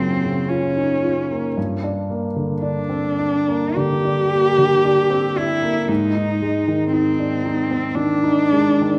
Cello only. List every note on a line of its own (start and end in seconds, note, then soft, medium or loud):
0.00 0.50 C4 medium
0.49 1.57 C#4 medium
2.62 3.78 D4 medium
3.77 5.39 G4 medium
5.37 5.90 E4 medium
5.89 6.92 D#4 medium
6.92 7.97 C4 medium
7.95 8.99 D4 medium